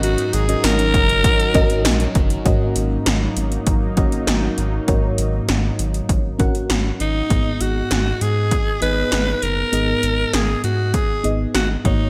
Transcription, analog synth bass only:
\new Staff \with { instrumentName = "Analog synth bass" } { \clef bass \time 4/4 \key gis \minor \tempo 4 = 99 gis,,8 gis,,8 gis,,8 fis,,8. r16 gis,,8 ais,,8 fis,,8 | gis,,8 gis,,8 gis,,8 gis,,8 gis,,8 gis,,8 gis,,8 gis,,8 | gis,,8 gis,,8 gis,,8 gis,,8 gis,,8 gis,,8 gis,,8 gis,,8 | gis,,8 gis,,8 gis,,8 gis,8. r16 gis,,8 gis,,8 fis,,8 |
gis,,8 gis,,8 gis,,8 gis,8. r16 gis,,8 gis,,8 gis,,8 | }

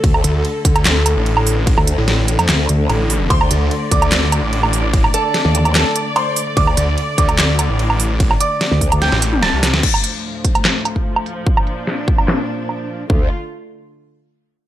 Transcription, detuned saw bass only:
\new Staff \with { instrumentName = "Detuned saw bass" } { \clef bass \time 4/4 \key d \minor \tempo 4 = 147 r8 d,8 r8 d,8. d,8 a,,4~ a,,16~ | a,,16 r8 a,,8 a,,8 f,16 r4 a,,4 | r8 d,8 r8 d,8. d,8 a,,4~ a,,16~ | a,,16 r2. r8. |
r8 d,8 r8 d,8. d,8 a,,4~ a,,16~ | a,,16 r2 a,,4 c,8 d,16 | r1 | r1 |
r1 | }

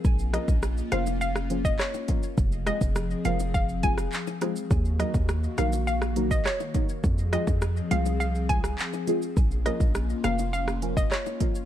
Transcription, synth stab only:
\new Staff \with { instrumentName = "Synth stab" } { \time 4/4 \key bes \minor \tempo 4 = 103 r8 <f bes des' f' bes'>8 r8 <f bes des' f' c''>8 r8 <f bes des' f' aes'>8 r8 <f bes des' f' bes'>8 | r8 <f aes c' f' aes'>8 r8 <f aes c' f' bes'>8 r8 <f aes c' f' aes'>8 r8 <f aes c' f' aes'>8 | r8 <ges bes ees' ges' bes'>8 r8 <ges bes ees' ges' bes'>8 r8 <ges bes ees' ges' bes'>8 r8 <ges bes ees' ges' bes'>8 | r8 <f aes c' f' aes'>8 r8 <f aes c' f' aes'>8 r8 <f aes c' f' aes'>8 r8 <f aes c' f' aes'>8 |
r8 <f bes des' f' bes'>8 r8 <f bes des' f' bes'>8 r8 <f bes des' f' bes'>8 r8 <f bes des' f' bes'>8 | }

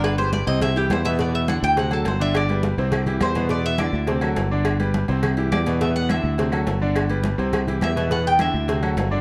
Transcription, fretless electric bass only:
\new Staff \with { instrumentName = "Fretless electric bass" } { \clef bass \time 4/4 \key g \major \tempo 4 = 208 g,,4. c,4. e,4~ | e,4. d,4. g,,4~ | g,,4. c,4. e,4~ | e,4. d,4. g,,4~ |
g,,4. c,4. e,4~ | e,4. d,4. g,,4~ | g,,4. c,4. e,4~ | e,4. d,4. g,,4 | }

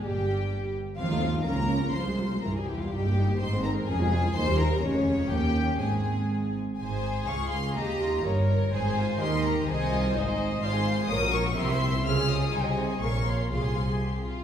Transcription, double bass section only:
\new Staff \with { instrumentName = "Double bass section" } { \clef bass \time 2/4 \key f \minor \tempo 4 = 125 g,,4. r8 | ees,4 des,4 | c,4 c,4 | \key aes \major g,,4 aes,,4 |
f,,4 ees,4 | f,,4 ees,4 | aes,,4. r8 | aes,,4 des,4 |
ees,4 g,,4 | aes,,4 ees,4 | c,4 aes,,4 | \key f \minor aes,,4 bes,,4 |
c,4 des,4 | c,4 bes,,4 | c,4. r8 | }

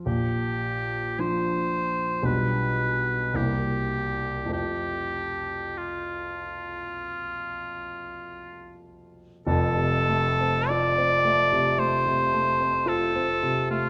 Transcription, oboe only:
\new Staff \with { instrumentName = "Oboe" } { \time 4/4 \key f \major \tempo 4 = 52 g'4 c''4 b'4 g'4 | g'4 f'2~ f'8 r8 | a'4 d''4 c''4 a'8. f'16 | }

